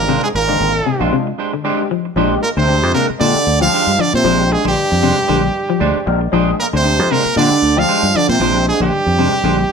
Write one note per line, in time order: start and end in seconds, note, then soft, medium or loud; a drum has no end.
0.00 0.16 G#1 medium
0.00 0.20 A#2 medium
0.00 0.21 A#3 medium
0.00 0.21 A#4 medium
0.08 0.27 C3 medium
0.08 0.25 G#3 medium
0.08 0.25 D4 medium
0.08 0.25 G4 medium
0.08 0.25 C5 medium
0.23 0.28 G#2 medium
0.23 0.30 G#3 medium
0.23 0.29 G#4 medium
0.34 0.54 G#1 medium
0.34 1.08 A#2 medium
0.34 1.10 A#3 medium
0.34 1.09 A#4 medium
0.34 muted clean electric guitar stroke soft
0.47 0.67 D3 medium
0.47 0.69 G#3 medium
0.47 0.70 C4 medium
0.47 0.70 D4 medium
0.47 0.61 D4 medium
0.47 0.70 F4 medium
0.47 0.60 G4 medium
0.47 muted clean electric guitar stroke medium
0.60 0.80 G#1 loud
0.60 muted clean electric guitar stroke soft
0.75 muted clean electric guitar stroke soft
0.86 1.05 C3 medium
0.86 muted clean electric guitar stroke soft
0.99 1.09 A#1 medium
0.99 1.27 G#3 medium
0.99 1.16 G#3 medium
0.99 1.27 C4 medium
0.99 1.27 D4 medium
0.99 1.16 D4 medium
0.99 1.27 F4 medium
0.99 1.15 G4 medium
0.99 1.15 C5 medium
1.13 1.31 C3 medium
1.27 muted clean electric guitar stroke medium
1.38 1.53 G#3 medium
1.38 1.52 D4 medium
1.38 1.52 G4 medium
1.38 1.52 C5 medium
1.53 1.72 D3 medium
1.53 muted clean electric guitar stroke soft
1.63 1.86 G#3 medium
1.63 1.81 G#3 medium
1.63 1.86 C4 medium
1.63 1.87 D4 medium
1.63 1.81 D4 medium
1.63 1.87 G4 loud
1.63 1.81 G4 medium
1.63 1.82 C5 loud
1.90 2.09 F3 medium
1.90 muted clean electric guitar stroke soft
2.05 muted clean electric guitar stroke soft
2.16 2.36 A#1 medium
2.16 2.35 F3 medium
2.16 2.38 G#3 loud
2.16 2.33 G#3 medium
2.16 2.38 C4 medium
2.16 2.39 D4 medium
2.16 2.34 D4 loud
2.16 2.39 G4 loud
2.16 2.34 C5 loud
2.16 muted clean electric guitar stroke loud
2.40 2.47 A#2 medium
2.40 2.50 A#3 medium
2.40 2.49 A#4 medium
2.40 muted clean electric guitar stroke soft
2.57 2.83 D2 loud
2.57 2.92 C3 medium
2.57 2.76 D3 medium
2.57 2.92 C4 medium
2.57 2.68 D4 soft
2.57 2.68 G4 medium
2.57 2.68 C5 medium
2.57 2.93 C5 medium
2.67 2.90 G#3 medium
2.67 2.90 C4 medium
2.67 2.91 D4 medium
2.67 2.91 G4 medium
2.67 muted clean electric guitar stroke soft
2.83 2.92 F2 medium
2.83 muted clean electric guitar stroke soft
2.93 3.05 A#2 medium
2.93 3.13 C3 medium
2.93 3.09 G#3 medium
2.93 3.07 A#3 medium
2.93 3.09 D4 medium
2.93 3.09 G4 medium
2.93 3.06 A#4 medium
2.93 muted clean electric guitar stroke medium
3.10 muted clean electric guitar stroke medium
3.10 muted fingered electric bass stroke soft
3.18 3.32 A#2 medium
3.18 3.58 D3 medium
3.18 3.39 D3 loud
3.18 3.37 G#3 medium
3.18 3.35 G#3 medium
3.18 3.37 C4 medium
3.18 3.37 D4 medium
3.18 3.59 D4 loud
3.18 3.38 G4 medium
3.18 3.35 C5 medium
3.18 3.58 D5 loud
3.18 muted clean electric guitar stroke medium
3.35 muted fingered electric bass stroke soft
3.35 muted clean electric guitar stroke soft
3.47 3.66 D2 medium
3.59 3.80 F3 medium
3.59 3.96 F3 medium
3.59 3.92 G#3 medium
3.59 3.92 C4 medium
3.59 3.92 D4 medium
3.59 4.02 F4 medium
3.59 3.92 G4 medium
3.59 4.02 F5 loud
3.59 muted clean electric guitar stroke soft
3.73 3.90 G#3 medium
3.73 3.90 D4 medium
3.73 3.90 G4 loud
3.73 3.90 C5 medium
3.87 3.96 G2 medium
3.98 4.13 D3 medium
3.98 4.17 F3 medium
3.98 4.13 D4 medium
3.98 4.14 D5 loud
3.98 muted fingered electric bass stroke soft
3.98 muted clean electric guitar stroke soft
4.13 4.22 A#2 medium
4.13 4.48 C3 medium
4.13 4.53 C4 medium
4.13 4.54 C5 medium
4.13 muted clean electric guitar stroke soft
4.24 4.55 A#1 loud
4.24 4.43 F3 medium
4.24 4.42 G#3 medium
4.24 4.42 D4 medium
4.24 4.42 G4 medium
4.24 4.42 C5 loud
4.37 4.65 G#3 medium
4.37 4.65 C4 medium
4.37 4.65 D4 medium
4.37 4.66 G4 medium
4.51 4.65 G#2 medium
4.51 4.66 G#3 medium
4.51 4.66 G#4 medium
4.51 muted clean electric guitar stroke soft
4.65 4.74 A#1 medium
4.65 6.03 G2 medium
4.65 4.83 D3 medium
4.65 6.04 G3 medium
4.65 4.76 D4 soft
4.65 4.76 G4 medium
4.65 6.04 G4 medium
4.65 4.76 C5 medium
4.77 muted clean electric guitar stroke soft
4.91 5.11 F2 medium
4.91 muted clean electric guitar stroke soft
5.02 5.21 C3 medium
5.02 5.47 G3 medium
5.02 5.17 G#3 medium
5.02 5.47 C4 medium
5.02 5.47 D4 medium
5.02 5.16 D4 medium
5.02 5.47 G4 medium
5.02 5.16 C5 medium
5.17 muted clean electric guitar stroke soft
5.28 5.49 A#1 medium
5.28 5.48 D3 loud
5.28 5.43 G#3 medium
5.28 5.42 D4 medium
5.28 5.41 G4 medium
5.28 5.41 C5 medium
5.43 muted clean electric guitar stroke soft
5.69 5.88 F3 medium
5.69 muted clean electric guitar stroke soft
5.80 5.92 D2 loud
5.80 5.97 G#3 medium
5.80 5.97 D4 loud
5.80 5.97 G4 loud
5.80 5.98 C5 loud
5.80 6.29 D5 medium
6.06 6.27 A#1 loud
6.06 6.18 G#3 medium
6.06 6.19 C4 medium
6.06 6.19 D4 medium
6.06 6.19 A#4 loud
6.06 muted clean electric guitar stroke soft
6.21 muted clean electric guitar stroke soft
6.32 6.52 A#1 loud
6.32 6.51 F3 medium
6.32 6.54 G#3 loud
6.32 6.49 G#3 medium
6.32 6.54 C4 medium
6.32 6.55 D4 loud
6.32 6.50 D4 loud
6.32 6.50 G4 loud
6.32 6.55 G#4 loud
6.32 6.50 C5 medium
6.59 6.65 A#2 medium
6.59 6.67 A#3 medium
6.59 6.66 A#4 medium
6.59 muted clean electric guitar stroke soft
6.73 6.99 D2 medium
6.73 7.09 C3 medium
6.73 6.92 D3 medium
6.73 7.14 C4 medium
6.73 6.84 D4 soft
6.73 6.85 G4 medium
6.73 6.85 C5 medium
6.73 7.13 C5 medium
6.83 7.06 G#3 medium
6.83 7.06 C4 medium
6.83 7.06 D4 medium
6.83 7.06 G4 medium
6.83 muted clean electric guitar stroke soft
6.99 7.08 F2 loud
7.11 7.37 A#2 medium
7.11 7.29 C3 medium
7.11 7.25 G#3 medium
7.11 7.37 A#3 medium
7.11 7.25 D4 medium
7.11 7.25 G4 medium
7.11 7.37 A#4 medium
7.11 7.24 C5 medium
7.25 muted fingered electric bass stroke soft
7.25 muted clean electric guitar stroke soft
7.36 7.47 A#2 loud
7.36 7.74 D3 loud
7.36 7.55 D3 loud
7.36 7.54 G#3 medium
7.36 7.51 G#3 medium
7.36 7.54 C4 medium
7.36 7.54 D4 medium
7.36 7.79 D4 loud
7.36 7.51 D4 medium
7.36 7.54 G4 medium
7.36 7.51 G4 medium
7.36 7.50 C5 medium
7.36 7.80 D5 loud
7.51 muted fingered electric bass stroke soft
7.51 muted clean electric guitar stroke soft
7.62 7.82 D2 medium
7.76 7.96 F3 medium
7.76 8.15 F3 medium
7.76 8.08 G#3 medium
7.76 8.08 C4 medium
7.76 8.08 D4 medium
7.76 8.17 F4 loud
7.76 8.08 G4 medium
7.76 8.18 F5 loud
7.76 muted clean electric guitar stroke soft
7.88 8.05 G#3 medium
7.88 8.05 D4 medium
7.88 8.05 G4 medium
7.88 8.05 C5 medium
8.03 8.12 G2 medium
8.14 8.29 D3 medium
8.14 8.34 F3 medium
8.14 8.29 D4 medium
8.14 8.29 D5 loud
8.14 muted fingered electric bass stroke soft
8.14 muted clean electric guitar stroke soft
8.29 8.38 A#2 medium
8.29 8.64 C3 medium
8.29 8.64 C4 loud
8.29 8.64 C5 medium
8.29 muted clean electric guitar stroke soft
8.40 8.71 A#1 loud
8.40 8.60 F3 loud
8.40 8.57 G#3 medium
8.40 8.57 D4 medium
8.40 8.57 G4 loud
8.40 8.57 C5 medium
8.53 8.81 G#3 medium
8.53 8.81 C4 medium
8.53 8.81 D4 medium
8.53 8.82 G4 medium
8.66 8.81 G#2 medium
8.66 8.81 G#3 medium
8.66 8.81 G#4 medium
8.66 muted clean electric guitar stroke soft
8.80 8.89 A#1 loud
8.80 9.72 G2 medium
8.80 9.00 D3 medium
8.80 9.72 G3 medium
8.80 8.92 D4 soft
8.80 8.92 G4 medium
8.80 9.72 G4 medium
8.80 8.92 C5 medium
8.93 muted clean electric guitar stroke soft
9.06 9.26 F2 medium
9.06 muted clean electric guitar stroke soft
9.18 9.37 C3 medium
9.18 9.62 G3 medium
9.18 9.33 G#3 medium
9.18 9.62 C4 medium
9.18 9.63 D4 medium
9.18 9.32 D4 medium
9.18 9.63 G4 medium
9.18 9.32 G4 medium
9.18 9.31 C5 medium
9.32 muted clean electric guitar stroke soft
9.44 9.64 A#1 medium
9.44 9.63 D3 medium
9.44 9.58 G#3 medium
9.44 9.58 D4 medium
9.44 9.58 G4 medium
9.44 9.58 C5 medium
9.59 muted clean electric guitar stroke soft